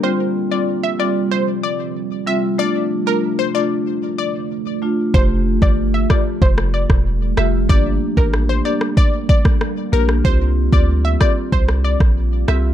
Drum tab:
SD |----------------|----------------|------r--r-r--r-|----r--r---rr--r|
BD |----------------|----------------|o--o--o-o--o----|o--o----o-oo----|

SD |------r--r-r--r-|
BD |o--o--o-o--o----|